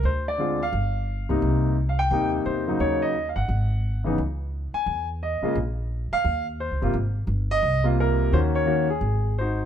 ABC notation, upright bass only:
X:1
M:4/4
L:1/8
Q:"Swing" 1/4=174
K:Ab
V:1 name="Upright bass" clef=bass
=D,,4 G,,,3 _D,, | C,,4 E,,2 _F,,2 | E,,3 G,,, A,,,4 | D,,3 z _F,,3 z |
B,,,3 z E,,2- (3E,, D,, G,,, | A,,,2 G,,,2 C,,4 | E,,4 A,,,4 |]